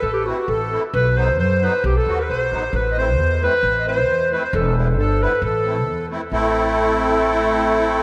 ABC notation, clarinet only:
X:1
M:2/4
L:1/16
Q:1/4=134
K:none
V:1 name="Clarinet"
A G ^F2 A3 z | B2 c2 c2 B2 | G A2 B c4 | B2 c4 B2- |
B2 c4 B c | A2 z2 A2 B2 | A6 z2 | A8- |
A8 |]